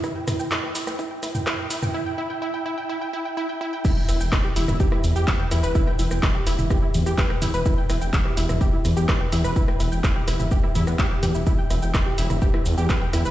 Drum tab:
CC |----------------|----------------|x---------------|----------------|
HH |--o---o---o---o-|----------------|--o---o---o---o-|--o---o---o---o-|
SH |x-xxx-xxx-xxx-xx|----------------|x-xxx-xxx-xxx-xx|x-xxx-xxx-xxx-xx|
CP |----x-------x---|----------------|----x-------x---|----x-------x---|
SD |r-r--r-r--r-r--r|----------------|--r-r--r-r--r-r-|-r-r--r-r--r-r--|
T2 |--o--------o---o|----------------|-------o--------|-------o--o---o-|
BD |o---o---o---o---|----------------|o---o---o---o---|o---o---o---o---|

CC |----------------|----------------|----------------|
HH |--o---o---o---o-|--o---o---o---o-|--o---o---o---o-|
SH |x-xxx-xxx-xxx-xx|x-xxx-xxx-xxx-xx|x-xxx-xxx-xxx-xx|
CP |----x-------x---|----x-------x---|----x-------x---|
SD |r-r--r-r--r-r--r|-r--r-r--r-r--r-|--r-r--r-r--r-r-|
T2 |-------o--------|-------o--o---o-|-------o--------|
BD |o---o---o---o---|o---o---o---o---|o---o---o---o---|